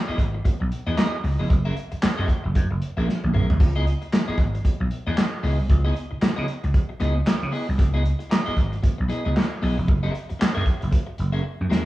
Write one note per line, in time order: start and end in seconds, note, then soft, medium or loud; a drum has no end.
0.08 0.17 B3 medium
0.08 0.18 E4 medium
0.08 0.18 G#4 medium
0.08 0.18 D#5 medium
0.08 muted slap bass stroke medium
0.18 0.38 G#1 medium
0.18 muted clean electric guitar stroke soft
0.18 kick medium
0.18 closed hi-hat medium
0.34 muted clean electric guitar stroke medium
0.45 muted clean electric guitar stroke soft
0.45 muted slap bass stroke medium
0.45 kick medium
0.45 closed hi-hat loud
0.60 0.69 B1 medium
0.60 muted clean electric guitar stroke soft
0.72 closed hi-hat medium
0.87 0.95 E2 loud
0.87 0.95 B3 medium
0.87 0.96 E4 medium
0.87 0.96 G#4 medium
0.87 0.97 D#5 medium
0.97 1.14 B3 medium
0.97 1.14 E4 medium
0.97 1.15 G#4 loud
0.97 1.15 D#5 loud
0.97 snare loud
0.97 clap medium
0.97 closed hi-hat medium
1.23 1.36 C#2 medium
1.23 muted clean electric guitar stroke soft
1.23 open hi-hat medium
1.39 1.50 F1 medium
1.39 1.49 B3 medium
1.39 1.49 E4 medium
1.39 1.48 G#4 medium
1.39 1.49 D#5 medium
1.49 1.70 F#1 loud
1.49 muted clean electric guitar stroke soft
1.49 kick loud
1.49 closed hi-hat medium
1.65 1.75 C#4 medium
1.65 1.76 G#4 medium
1.65 1.76 A#4 medium
1.65 1.76 E5 medium
1.76 muted clean electric guitar stroke soft
1.76 closed hi-hat medium
1.92 muted clean electric guitar stroke medium
1.92 muted slap bass stroke soft
1.92 closed hi-hat medium
2.02 muted clean electric guitar stroke soft
2.02 muted slap bass stroke soft
2.02 snare loud
2.02 clap loud
2.02 closed hi-hat loud
2.17 2.27 F#2 loud
2.17 2.27 C#4 medium
2.17 2.27 G#4 medium
2.17 2.28 A#4 medium
2.17 2.28 E5 medium
2.28 muted clean electric guitar stroke soft
2.28 kick medium
2.28 closed hi-hat medium
2.44 2.53 F#1 loud
2.44 muted clean electric guitar stroke soft
2.55 2.67 F#2 loud
2.55 muted clean electric guitar stroke soft
2.55 kick medium
2.55 closed hi-hat loud
2.70 2.79 F#1 medium
2.70 muted clean electric guitar stroke soft
2.82 closed hi-hat medium
2.97 3.05 A#1 medium
2.97 3.07 C#4 medium
2.97 3.07 G#4 medium
2.97 3.07 A#4 medium
2.97 3.08 E5 medium
3.08 muted clean electric guitar stroke soft
3.08 snare medium
3.23 3.31 A#1 medium
3.23 high tom medium
3.33 3.49 B1 medium
3.33 3.47 C#4 medium
3.33 3.47 G#4 medium
3.33 3.48 A#4 medium
3.33 3.48 E5 medium
3.33 mid tom medium
3.49 3.57 C2 loud
3.49 muted clean electric guitar stroke soft
3.49 floor tom loud
3.60 3.92 C#2 loud
3.60 muted clean electric guitar stroke soft
3.60 kick loud
3.60 splash medium
3.76 3.85 B3 medium
3.76 3.85 E4 medium
3.76 3.85 G#4 medium
3.76 3.86 D#5 medium
3.86 muted clean electric guitar stroke soft
3.86 closed hi-hat medium
4.02 muted clean electric guitar stroke soft
4.02 closed hi-hat soft
4.12 muted clean electric guitar stroke soft
4.12 snare loud
4.12 clap loud
4.12 closed hi-hat medium
4.28 4.38 B3 medium
4.28 4.38 E4 medium
4.28 4.38 G#4 loud
4.28 4.39 D#5 medium
4.28 muted slap bass stroke medium
4.38 4.58 G#1 medium
4.38 muted clean electric guitar stroke soft
4.38 kick medium
4.38 closed hi-hat medium
4.55 muted clean electric guitar stroke soft
4.55 closed hi-hat soft
4.65 muted clean electric guitar stroke soft
4.65 kick medium
4.65 closed hi-hat loud
4.80 4.88 B1 medium
4.80 muted clean electric guitar stroke soft
4.91 closed hi-hat medium
5.07 5.15 E2 medium
5.07 5.16 B3 medium
5.07 5.16 E4 medium
5.07 5.16 G#4 medium
5.07 5.17 D#5 medium
5.17 muted clean electric guitar stroke soft
5.17 snare loud
5.17 clap medium
5.17 closed hi-hat medium
5.43 5.59 C#2 loud
5.43 5.57 B3 medium
5.43 5.57 E4 medium
5.43 5.57 G#4 medium
5.43 5.57 D#5 medium
5.43 open hi-hat medium
5.59 5.67 C2 medium
5.59 muted clean electric guitar stroke soft
5.70 5.89 C#2 loud
5.70 muted clean electric guitar stroke soft
5.70 kick loud
5.70 closed hi-hat medium
5.85 5.94 B3 medium
5.85 5.94 E4 medium
5.85 5.94 G#4 medium
5.85 5.95 D#5 medium
5.95 muted clean electric guitar stroke soft
5.95 closed hi-hat medium
6.11 muted clean electric guitar stroke soft
6.11 muted slap bass stroke medium
6.21 muted clean electric guitar stroke soft
6.21 muted slap bass stroke soft
6.21 snare loud
6.21 clap loud
6.21 closed hi-hat loud
6.37 6.46 C#3 loud
6.37 6.46 B3 medium
6.37 6.47 E4 medium
6.37 6.47 G#4 medium
6.37 6.47 D#5 medium
6.47 muted clean electric guitar stroke soft
6.47 closed hi-hat medium
6.64 6.72 C#2 loud
6.64 muted clean electric guitar stroke medium
6.64 closed hi-hat medium
6.74 kick loud
6.74 closed hi-hat loud
6.89 muted clean electric guitar stroke soft
7.00 7.20 C#2 loud
7.00 7.17 B3 medium
7.00 7.15 E4 medium
7.00 7.15 G#4 medium
7.00 7.15 D#5 loud
7.00 closed hi-hat medium
7.16 muted clean electric guitar stroke soft
7.26 muted clean electric guitar stroke medium
7.26 snare loud
7.26 clap medium
7.26 closed hi-hat medium
7.43 7.51 C#3 loud
7.52 7.66 B3 medium
7.52 7.66 E4 medium
7.52 7.66 G#4 medium
7.52 7.67 D#5 medium
7.52 open hi-hat medium
7.68 7.79 C2 loud
7.68 muted clean electric guitar stroke medium
7.78 8.10 C#2 loud
7.78 muted clean electric guitar stroke soft
7.78 kick loud
7.78 closed hi-hat medium
7.94 8.03 B3 medium
7.94 8.03 E4 medium
7.94 8.03 G#4 medium
7.94 8.03 D#5 medium
8.04 muted clean electric guitar stroke soft
8.04 closed hi-hat medium
8.19 muted clean electric guitar stroke soft
8.19 closed hi-hat medium
8.30 muted clean electric guitar stroke soft
8.30 snare loud
8.30 clap loud
8.30 closed hi-hat medium
8.46 8.55 B3 medium
8.46 8.55 E4 medium
8.46 8.55 G#4 medium
8.46 8.56 D#5 medium
8.46 muted slap bass stroke medium
8.56 8.77 G#1 medium
8.56 muted clean electric guitar stroke soft
8.56 kick medium
8.56 closed hi-hat medium
8.72 muted clean electric guitar stroke soft
8.72 closed hi-hat medium
8.83 muted clean electric guitar stroke soft
8.83 kick loud
8.83 closed hi-hat loud
8.98 9.08 B1 medium
8.98 muted clean electric guitar stroke medium
9.08 9.23 B3 medium
9.08 9.23 E4 medium
9.08 9.23 G#4 medium
9.08 9.23 D#5 medium
9.08 closed hi-hat medium
9.25 9.33 C#2 medium
9.25 9.34 B3 medium
9.25 9.35 E4 medium
9.25 9.34 G#4 medium
9.25 9.34 D#5 medium
9.35 muted clean electric guitar stroke soft
9.35 snare loud
9.35 clap medium
9.35 closed hi-hat medium
9.62 9.74 B1 loud
9.62 9.75 B3 medium
9.62 9.76 E4 medium
9.62 9.76 G#4 medium
9.62 9.76 D#5 medium
9.62 open hi-hat medium
9.77 9.88 F1 loud
9.77 muted clean electric guitar stroke medium
9.87 10.08 F#1 loud
9.87 muted clean electric guitar stroke soft
9.87 kick loud
9.87 closed hi-hat medium
10.03 10.12 C#4 medium
10.03 10.13 G#4 medium
10.03 10.13 A#4 medium
10.03 10.13 E5 medium
10.13 muted clean electric guitar stroke soft
10.13 closed hi-hat medium
10.29 muted clean electric guitar stroke soft
10.29 muted slap bass stroke soft
10.29 closed hi-hat soft
10.39 muted clean electric guitar stroke soft
10.39 muted slap bass stroke soft
10.39 snare loud
10.39 clap loud
10.39 closed hi-hat medium
10.55 10.64 F#2 loud
10.55 10.63 C#4 medium
10.55 10.64 G#4 medium
10.55 10.64 A#4 medium
10.55 10.64 E5 medium
10.65 muted clean electric guitar stroke soft
10.65 kick medium
10.65 closed hi-hat medium
10.81 10.90 F#1 medium
10.81 muted clean electric guitar stroke soft
10.81 closed hi-hat medium
10.91 muted clean electric guitar stroke soft
10.91 kick medium
10.91 closed hi-hat loud
11.07 muted clean electric guitar stroke soft
11.18 11.38 F#1 medium
11.18 closed hi-hat medium
11.32 11.42 C#4 medium
11.32 11.42 G#4 medium
11.32 11.43 A#4 medium
11.32 11.43 E5 medium
11.43 muted clean electric guitar stroke soft
11.61 11.68 F#2 medium
11.70 11.83 E2 medium
11.70 11.84 C#4 medium
11.70 11.84 G#4 medium
11.70 11.84 A#4 medium
11.70 11.85 E5 medium
11.70 snare loud